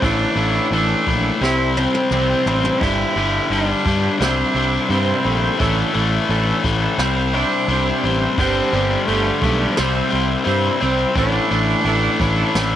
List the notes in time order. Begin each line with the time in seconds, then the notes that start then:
0.01 A1 A2 E3 A3 D4 E4 A4, kick, open hi-hat
0.35 A1 A2 E3 A3 D4 E4
0.40 A4
0.71 A1 A2 E3 A3 D4 E4 A4, open hi-hat
1.06 A#1 A2 E3 A3, muted clean electric guitar stroke, kick
1.23 A3 D4 E4 A4
1.41 C2 C3 G3 C4 E4 G4 C5, snare
1.58 C4 E4 G4 C5
1.76 C3 G3 C4 E4 G4 C5, high tom
1.94 high tom
2.11 C2 C3 G3 C4 E4 G4 C5, mid tom
2.28 C4 E4 G4 C5
2.46 A1 C3 G3 C4 E4 G4 C5, floor tom
2.64 C4 E4 G4 C5, floor tom
2.80 G1 G2 D3 G3 D4 E4 G4, kick, open hi-hat
3.15 G1 G2 D3 G3 D4 G4
3.50 G1 G2 D3 G3 D4 G4, open hi-hat
3.86 G2 D3 G3, kick
4.03 G3 D4 G4
4.20 C2 C3 G3 C4 D4 E4 G4 C5, snare
4.36 C4 E4 G4 C5
4.54 C2 C3 G3 C4 E4 G4 C5
4.89 G2 C3 G3 C4 E4 G4 C5, open hi-hat
5.07 C4 E4 G4 C5
5.24 A#1 C3 G3 A3 C4 E4 G4 C5
5.41 C4 E4 G4 C5
5.59 A1 A2 E3 A3 D4 E4 A4, kick, open hi-hat
5.93 A1 A2 E3 A3 D4 E4 A4
6.29 A1 A2 E3 A3 D4 E4 A4, open hi-hat
6.63 A1 A2 E3 A3, muted clean electric guitar stroke, kick
6.81 A3 D4 E4 A4
6.98 C2 C3 G3 C4 E4 G4 C5, snare, open hi-hat
7.16 C4 E4 G4 C5
7.33 C3 G3 C4 D4 E4 G4 C5
7.68 C2 C3 G3 C4 E4, open hi-hat
7.72 G4 C5
7.87 C4 E4 G4 C5
8.04 A1 C3 G3 C4 E4 G4 C5
8.21 C4 E4 G4 C5
8.37 G1 G2 D3 G3 C4 D4 G4, kick, open hi-hat
8.73 G1 G2 D3 G3 D4 G4
9.05 G1 A3, open hi-hat
9.09 G2 D3 G3 D4 G4
9.39 B1 G2 A3, kick
9.44 D3 G3, muted clean electric guitar stroke
9.60 G3 D4 G4
9.70 F3
9.75 C2 C3 G3, snare
9.79 C4 E4 G4 C5
9.95 C4 E4 G4 C5
10.10 C2 C3 G3 C4 E4
10.15 G4 C5
10.46 G2 C3 G3 C4 E4 G4 C5, open hi-hat
10.64 C4 E4 G4 C5
10.80 C2 C3 G3 C4 E4 G4 C5
10.98 C4 E4 G4 C5
11.15 A1 A2 E3 A3 D4 E4 A4, kick, open hi-hat
11.50 A1 A2 E3 A3 D4 E4 A4
11.84 A1 A2 E3 A3 D4 E4, open hi-hat
11.89 A4
12.20 A1 A2 E3 A3, muted clean electric guitar stroke, kick
12.38 A3 D4 E4 A4
12.55 A1 A2 E3 A3, snare, open hi-hat
12.72 A4